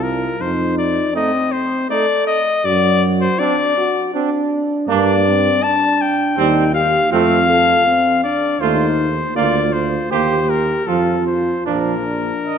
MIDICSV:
0, 0, Header, 1, 6, 480
1, 0, Start_track
1, 0, Tempo, 746269
1, 261, Time_signature, 3, 2, 24, 8
1, 6021, Tempo, 760456
1, 6981, Tempo, 790514
1, 8012, End_track
2, 0, Start_track
2, 0, Title_t, "Cornet"
2, 0, Program_c, 0, 56
2, 20, Note_on_c, 0, 70, 77
2, 264, Note_on_c, 0, 72, 94
2, 274, Note_off_c, 0, 70, 0
2, 499, Note_off_c, 0, 72, 0
2, 503, Note_on_c, 0, 74, 90
2, 738, Note_off_c, 0, 74, 0
2, 744, Note_on_c, 0, 75, 100
2, 976, Note_on_c, 0, 72, 94
2, 986, Note_off_c, 0, 75, 0
2, 1220, Note_off_c, 0, 72, 0
2, 1224, Note_on_c, 0, 74, 112
2, 1456, Note_off_c, 0, 74, 0
2, 1460, Note_on_c, 0, 75, 112
2, 1704, Note_on_c, 0, 74, 125
2, 1714, Note_off_c, 0, 75, 0
2, 1958, Note_off_c, 0, 74, 0
2, 2066, Note_on_c, 0, 72, 99
2, 2180, Note_on_c, 0, 74, 113
2, 2189, Note_off_c, 0, 72, 0
2, 2658, Note_off_c, 0, 74, 0
2, 3136, Note_on_c, 0, 74, 110
2, 3621, Note_on_c, 0, 81, 127
2, 3630, Note_off_c, 0, 74, 0
2, 3868, Note_on_c, 0, 79, 100
2, 3877, Note_off_c, 0, 81, 0
2, 4333, Note_off_c, 0, 79, 0
2, 4337, Note_on_c, 0, 77, 114
2, 4573, Note_off_c, 0, 77, 0
2, 4580, Note_on_c, 0, 77, 126
2, 5285, Note_off_c, 0, 77, 0
2, 5300, Note_on_c, 0, 74, 93
2, 5541, Note_on_c, 0, 72, 85
2, 5550, Note_off_c, 0, 74, 0
2, 6017, Note_off_c, 0, 72, 0
2, 6021, Note_on_c, 0, 74, 102
2, 6253, Note_on_c, 0, 72, 83
2, 6263, Note_off_c, 0, 74, 0
2, 6492, Note_off_c, 0, 72, 0
2, 6496, Note_on_c, 0, 72, 96
2, 6738, Note_on_c, 0, 70, 87
2, 6748, Note_off_c, 0, 72, 0
2, 6972, Note_on_c, 0, 69, 77
2, 6982, Note_off_c, 0, 70, 0
2, 7209, Note_off_c, 0, 69, 0
2, 7213, Note_on_c, 0, 72, 70
2, 7449, Note_off_c, 0, 72, 0
2, 7455, Note_on_c, 0, 70, 80
2, 8012, Note_off_c, 0, 70, 0
2, 8012, End_track
3, 0, Start_track
3, 0, Title_t, "French horn"
3, 0, Program_c, 1, 60
3, 0, Note_on_c, 1, 65, 69
3, 253, Note_off_c, 1, 65, 0
3, 257, Note_on_c, 1, 63, 78
3, 738, Note_on_c, 1, 60, 80
3, 748, Note_off_c, 1, 63, 0
3, 1221, Note_off_c, 1, 60, 0
3, 1225, Note_on_c, 1, 69, 81
3, 1532, Note_off_c, 1, 69, 0
3, 1705, Note_on_c, 1, 66, 87
3, 2182, Note_on_c, 1, 62, 77
3, 2192, Note_off_c, 1, 66, 0
3, 2421, Note_off_c, 1, 62, 0
3, 2424, Note_on_c, 1, 66, 90
3, 2657, Note_off_c, 1, 66, 0
3, 2663, Note_on_c, 1, 62, 88
3, 3144, Note_on_c, 1, 58, 77
3, 3154, Note_off_c, 1, 62, 0
3, 3381, Note_off_c, 1, 58, 0
3, 3388, Note_on_c, 1, 60, 75
3, 3618, Note_off_c, 1, 60, 0
3, 3622, Note_on_c, 1, 62, 84
3, 4090, Note_off_c, 1, 62, 0
3, 4105, Note_on_c, 1, 63, 83
3, 4340, Note_on_c, 1, 67, 80
3, 4350, Note_off_c, 1, 63, 0
3, 4574, Note_off_c, 1, 67, 0
3, 4578, Note_on_c, 1, 65, 86
3, 4813, Note_off_c, 1, 65, 0
3, 4822, Note_on_c, 1, 69, 91
3, 5055, Note_off_c, 1, 69, 0
3, 5059, Note_on_c, 1, 60, 77
3, 5302, Note_on_c, 1, 62, 79
3, 5312, Note_off_c, 1, 60, 0
3, 5536, Note_off_c, 1, 62, 0
3, 5540, Note_on_c, 1, 63, 85
3, 5845, Note_off_c, 1, 63, 0
3, 6017, Note_on_c, 1, 65, 77
3, 6492, Note_on_c, 1, 67, 85
3, 6501, Note_off_c, 1, 65, 0
3, 6970, Note_off_c, 1, 67, 0
3, 6974, Note_on_c, 1, 65, 73
3, 7458, Note_on_c, 1, 62, 65
3, 7467, Note_off_c, 1, 65, 0
3, 8012, Note_off_c, 1, 62, 0
3, 8012, End_track
4, 0, Start_track
4, 0, Title_t, "Trumpet"
4, 0, Program_c, 2, 56
4, 742, Note_on_c, 2, 63, 59
4, 845, Note_off_c, 2, 63, 0
4, 1222, Note_on_c, 2, 63, 65
4, 1325, Note_off_c, 2, 63, 0
4, 2189, Note_on_c, 2, 62, 76
4, 2292, Note_off_c, 2, 62, 0
4, 2664, Note_on_c, 2, 62, 66
4, 2767, Note_off_c, 2, 62, 0
4, 3148, Note_on_c, 2, 62, 79
4, 3315, Note_off_c, 2, 62, 0
4, 4101, Note_on_c, 2, 60, 83
4, 4271, Note_off_c, 2, 60, 0
4, 4579, Note_on_c, 2, 60, 71
4, 4750, Note_off_c, 2, 60, 0
4, 5537, Note_on_c, 2, 65, 69
4, 5709, Note_off_c, 2, 65, 0
4, 6021, Note_on_c, 2, 65, 65
4, 6191, Note_off_c, 2, 65, 0
4, 6496, Note_on_c, 2, 67, 68
4, 6669, Note_off_c, 2, 67, 0
4, 6981, Note_on_c, 2, 65, 58
4, 7151, Note_off_c, 2, 65, 0
4, 7454, Note_on_c, 2, 62, 57
4, 7631, Note_off_c, 2, 62, 0
4, 7941, Note_on_c, 2, 75, 71
4, 8012, Note_off_c, 2, 75, 0
4, 8012, End_track
5, 0, Start_track
5, 0, Title_t, "Trombone"
5, 0, Program_c, 3, 57
5, 738, Note_on_c, 3, 57, 62
5, 841, Note_off_c, 3, 57, 0
5, 1218, Note_on_c, 3, 57, 63
5, 1321, Note_off_c, 3, 57, 0
5, 2177, Note_on_c, 3, 60, 69
5, 2280, Note_off_c, 3, 60, 0
5, 2660, Note_on_c, 3, 60, 66
5, 2763, Note_off_c, 3, 60, 0
5, 3138, Note_on_c, 3, 58, 80
5, 3310, Note_off_c, 3, 58, 0
5, 4099, Note_on_c, 3, 55, 75
5, 4270, Note_off_c, 3, 55, 0
5, 4582, Note_on_c, 3, 57, 89
5, 4752, Note_off_c, 3, 57, 0
5, 5538, Note_on_c, 3, 57, 72
5, 5710, Note_off_c, 3, 57, 0
5, 6016, Note_on_c, 3, 58, 67
5, 6188, Note_off_c, 3, 58, 0
5, 6494, Note_on_c, 3, 58, 64
5, 6668, Note_off_c, 3, 58, 0
5, 6981, Note_on_c, 3, 53, 64
5, 7151, Note_off_c, 3, 53, 0
5, 7456, Note_on_c, 3, 53, 60
5, 7632, Note_off_c, 3, 53, 0
5, 8012, End_track
6, 0, Start_track
6, 0, Title_t, "Tuba"
6, 0, Program_c, 4, 58
6, 0, Note_on_c, 4, 36, 80
6, 181, Note_off_c, 4, 36, 0
6, 260, Note_on_c, 4, 41, 76
6, 661, Note_off_c, 4, 41, 0
6, 1704, Note_on_c, 4, 42, 91
6, 2104, Note_off_c, 4, 42, 0
6, 3141, Note_on_c, 4, 43, 97
6, 3539, Note_off_c, 4, 43, 0
6, 4101, Note_on_c, 4, 39, 91
6, 4499, Note_off_c, 4, 39, 0
6, 4576, Note_on_c, 4, 41, 93
6, 4977, Note_off_c, 4, 41, 0
6, 5535, Note_on_c, 4, 39, 86
6, 5937, Note_off_c, 4, 39, 0
6, 6016, Note_on_c, 4, 38, 85
6, 6414, Note_off_c, 4, 38, 0
6, 6495, Note_on_c, 4, 39, 65
6, 6897, Note_off_c, 4, 39, 0
6, 6981, Note_on_c, 4, 41, 70
6, 7375, Note_off_c, 4, 41, 0
6, 7456, Note_on_c, 4, 34, 66
6, 7858, Note_off_c, 4, 34, 0
6, 8012, End_track
0, 0, End_of_file